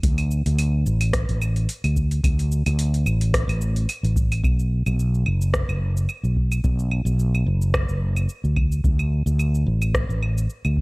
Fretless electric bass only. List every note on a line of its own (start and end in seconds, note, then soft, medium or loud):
0.03 0.42 D2 loud
0.46 0.83 D2 loud
0.86 1.25 A1 loud
1.29 1.66 A1 medium
1.84 2.21 D2 medium
2.24 2.63 D2 loud
2.66 3.03 D2 loud
3.06 3.45 A1 loud
3.48 3.85 A1 medium
4.03 4.41 A1 medium
4.44 4.83 B1 medium
4.86 5.23 B1 medium
5.26 5.65 F#1 medium
5.69 6.06 F#1 medium
6.24 6.61 B1 medium
6.64 7.03 B1 loud
7.05 7.43 B1 medium
7.46 7.85 F#1 medium
7.89 8.26 F#1 medium
8.44 8.81 D2 medium
8.84 9.23 D2 medium
9.26 9.63 D2 medium
9.66 10.05 A1 loud
10.09 10.46 A1 medium
10.65 10.81 D2 medium